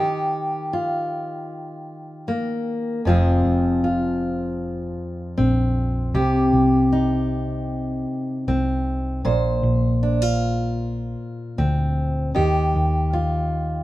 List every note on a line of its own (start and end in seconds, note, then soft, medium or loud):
0.00 3.01 D#3 medium
0.00 3.05 G4 medium
0.73 3.01 F4 soft
2.28 3.05 A#3 soft
3.05 3.43 F1 medium
3.05 6.15 F2 medium
3.05 6.16 F3 soft
3.05 5.37 C4 soft
3.05 3.83 F4 medium
3.05 6.12 G#4 medium
3.45 4.95 F1 medium
3.84 6.11 F4 soft
5.38 6.12 A#1 medium
5.38 8.47 C4 soft
6.14 6.52 C2 medium
6.14 9.25 C3 medium
6.14 9.25 G4 medium
6.54 8.05 C2 medium
6.92 9.21 D#4 soft
8.48 9.22 C2 medium
8.48 9.21 C4 soft
9.25 9.62 A#1 medium
9.25 12.31 A#2 medium
9.25 12.31 C5 medium
9.63 11.15 A#1 medium
10.03 10.22 D4 soft
10.22 12.35 F4 soft
11.58 12.32 D2 medium
11.58 12.31 C4 medium
12.35 12.73 D#2 medium
12.35 13.84 D#3 medium
12.35 13.84 G4 medium
12.76 13.84 D#2 medium
13.13 13.84 F4 soft